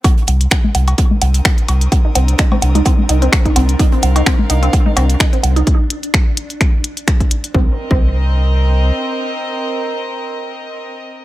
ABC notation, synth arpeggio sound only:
X:1
M:4/4
L:1/16
Q:"Swing 16ths" 1/4=128
K:Cm
V:1 name="Synth arpeggio sound"
z16 | z E C z E C z E C z E C z E C z | E C z E C z E C z E C z E C z E | z16 |
C z2 C z12 | z16 |]